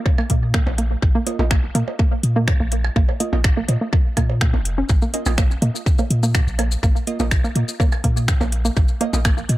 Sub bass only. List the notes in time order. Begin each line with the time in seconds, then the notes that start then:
0.30 A#2
0.67 A#1
1.02 A#1
1.39 A#1
1.75 A#2
2.23 A#2
2.60 A#1
2.96 A#1
3.33 A#1
3.69 A#2
4.17 A#2
4.54 F1
4.89 A#1
5.26 A#1
5.62 A#2
6.10 A#2
6.47 A#1
6.83 A#1
7.20 A#1
7.56 A#2
8.04 A#2
8.41 A#1
8.77 A#1
9.14 A#1
9.49 A#2